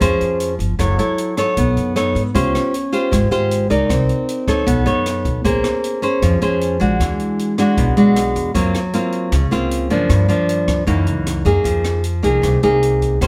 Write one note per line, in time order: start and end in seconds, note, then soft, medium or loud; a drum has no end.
0.00 0.19 F2 medium
0.00 0.77 F3 medium
0.00 0.53 C#4 soft
0.00 0.53 G#4 medium
0.00 0.53 C5 medium
0.00 kick soft
0.00 cross-stick medium
0.00 closed hi-hat soft
0.21 0.57 F2 medium
0.21 closed hi-hat soft
0.40 closed hi-hat soft
0.59 0.77 G1 medium
0.59 closed hi-hat soft
0.79 0.97 F#1 medium
0.79 1.54 F#3 soft
0.79 0.95 E4 soft
0.79 0.95 A4 medium
0.79 0.96 C#5 medium
0.79 kick soft
0.79 cross-stick medium
0.79 closed hi-hat soft
0.99 1.34 E4 medium
0.99 1.34 A4 medium
0.99 1.35 C#5 medium
0.99 closed hi-hat soft
1.18 closed hi-hat soft
1.37 1.92 D#4 medium
1.37 1.93 A4 medium
1.37 1.93 C#5 medium
1.37 cross-stick medium
1.37 closed hi-hat soft
1.57 1.75 B1 medium
1.57 2.33 B3 medium
1.57 kick soft
1.57 closed hi-hat soft
1.77 2.12 F#2 medium
1.77 closed hi-hat soft
1.96 2.22 D#4 medium
1.96 2.22 A4 soft
1.96 2.22 C#5 medium
1.96 cross-stick medium
1.96 closed hi-hat soft
2.15 2.33 G#2 medium
2.15 closed hi-hat soft
2.34 2.53 C#2 loud
2.34 3.10 C#4 medium
2.34 2.73 F4 medium
2.34 2.73 G4 medium
2.34 2.73 C5 medium
2.34 kick medium
2.34 closed hi-hat soft
2.55 cross-stick medium
2.55 closed hi-hat soft
2.74 closed hi-hat soft
2.92 3.28 F4 medium
2.92 3.28 G4 medium
2.92 3.28 C5 medium
2.92 closed hi-hat soft
3.11 3.30 G#1 loud
3.11 3.87 G#3 medium
3.11 kick medium
3.11 cross-stick medium
3.11 closed hi-hat soft
3.31 3.67 G#1 medium
3.31 3.67 F4 medium
3.31 3.67 G4 medium
3.31 3.67 C5 medium
3.31 closed hi-hat soft
3.51 closed hi-hat soft
3.70 3.88 C#2 medium
3.70 4.44 D#4 medium
3.70 4.44 A#4 medium
3.70 4.45 D5 medium
3.70 closed hi-hat soft
3.89 4.07 C2 medium
3.89 4.65 C4 medium
3.89 kick medium
3.89 cross-stick medium
3.89 closed hi-hat soft
4.09 closed hi-hat soft
4.29 closed hi-hat soft
4.48 4.83 D#4 medium
4.48 4.83 A4 medium
4.48 4.84 C#5 medium
4.48 kick medium
4.48 cross-stick medium
4.48 closed hi-hat soft
4.66 4.85 B1 loud
4.66 5.42 B3 medium
4.66 kick medium
4.66 closed hi-hat soft
4.85 5.22 F#2 medium
4.85 5.41 D#4 medium
4.85 5.41 A4 medium
4.85 5.41 C#5 medium
4.85 closed hi-hat soft
5.06 cross-stick medium
5.06 closed hi-hat soft
5.25 5.43 B1 medium
5.25 kick soft
5.25 closed hi-hat soft
5.44 5.63 A#1 medium
5.44 6.20 A#3 medium
5.44 5.99 C#4 soft
5.44 6.00 G#4 medium
5.44 6.00 C5 medium
5.44 kick medium
5.44 closed hi-hat soft
5.64 cross-stick medium
5.64 closed hi-hat soft
5.84 closed hi-hat soft
6.02 6.38 C#4 medium
6.02 6.38 G#4 medium
6.02 6.39 C5 medium
6.02 closed hi-hat soft
6.22 6.40 F2 loud
6.22 6.98 F3 medium
6.22 kick medium
6.22 cross-stick medium
6.22 closed hi-hat soft
6.42 6.78 F2 medium
6.42 6.77 C#4 medium
6.42 6.78 G#4 medium
6.42 6.78 C5 medium
6.42 closed hi-hat soft
6.61 closed hi-hat soft
6.80 6.98 A#1 medium
6.80 7.54 G#3 medium
6.80 7.55 D4 medium
6.80 7.55 F#4 medium
6.80 closed hi-hat soft
7.00 7.18 E2 medium
7.00 7.76 E3 medium
7.00 kick soft
7.00 cross-stick soft
7.00 closed hi-hat soft
7.20 closed hi-hat soft
7.39 closed hi-hat soft
7.58 7.94 G#3 medium
7.58 7.94 D4 medium
7.58 7.94 F#4 medium
7.58 cross-stick medium
7.58 closed hi-hat soft
7.77 7.95 B1 loud
7.77 8.53 B2 medium
7.77 kick soft
7.77 closed hi-hat soft
7.97 8.33 B1 medium
7.97 8.52 G#3 medium
7.97 8.52 D4 medium
7.97 8.52 F#4 medium
7.97 closed hi-hat soft
8.16 cross-stick medium
8.16 closed hi-hat soft
8.36 8.53 E2 medium
8.36 closed hi-hat soft
8.54 8.73 F#2 medium
8.54 9.30 F#3 medium
8.54 8.80 A#3 soft
8.54 8.80 C4 soft
8.54 8.80 F4 medium
8.54 kick medium
8.54 closed hi-hat soft
8.74 cross-stick medium
8.74 closed hi-hat soft
8.93 9.32 A#3 soft
8.93 9.32 C4 medium
8.93 9.32 F4 medium
8.93 closed hi-hat soft
9.12 closed hi-hat soft
9.32 9.50 C#2 loud
9.32 10.08 C#3 medium
9.32 kick medium
9.32 cross-stick soft
9.32 closed hi-hat soft
9.51 9.88 C#2 medium
9.51 9.87 A#3 medium
9.51 9.87 C4 medium
9.51 9.87 F4 medium
9.51 closed hi-hat soft
9.71 closed hi-hat soft
9.90 10.08 F#2 medium
9.90 10.26 F3 medium
9.90 10.26 A#3 medium
9.90 10.27 D4 medium
9.90 closed hi-hat soft
10.09 10.28 G2 medium
10.09 10.86 G2 medium
10.09 kick medium
10.09 cross-stick medium
10.09 closed hi-hat soft
10.29 10.84 F3 medium
10.29 10.84 A#3 soft
10.29 10.85 D4 medium
10.29 closed hi-hat soft
10.49 closed hi-hat soft
10.68 kick medium
10.68 cross-stick medium
10.68 closed hi-hat soft
10.87 11.63 F#2 medium
10.87 11.06 F#2 loud
10.87 11.42 E3 medium
10.87 11.42 A#3 medium
10.87 11.43 D#4 medium
10.87 kick medium
10.87 closed hi-hat soft
11.07 11.43 C#2 medium
11.07 closed hi-hat soft
11.27 cross-stick medium
11.27 closed hi-hat soft
11.45 11.64 F#2 medium
11.45 12.01 A#3 medium
11.45 12.01 D#4 medium
11.45 12.01 G#4 medium
11.45 kick medium
11.45 closed hi-hat soft
11.64 12.20 F2 medium
11.64 12.41 F3 medium
11.64 kick soft
11.64 closed hi-hat soft
11.84 cross-stick medium
11.84 closed hi-hat soft
12.04 closed hi-hat soft
12.23 12.42 C2 medium
12.23 12.59 A#3 medium
12.23 12.59 D#4 medium
12.23 12.60 G#4 medium
12.23 kick soft
12.23 closed hi-hat soft
12.42 12.61 C2 medium
12.42 13.18 C3 medium
12.42 kick soft
12.42 cross-stick soft
12.42 closed hi-hat soft
12.63 13.17 C2 medium
12.63 13.18 A#3 medium
12.63 13.18 D#4 medium
12.63 13.18 G#4 medium
12.63 closed hi-hat soft
12.83 closed hi-hat soft
13.02 kick soft
13.02 closed hi-hat soft
13.21 13.27 D#2 medium
13.21 13.27 D#3 soft
13.21 13.27 C#4 soft
13.21 13.27 G4 soft
13.21 13.27 C5 medium
13.21 kick medium
13.21 cross-stick medium
13.21 closed hi-hat soft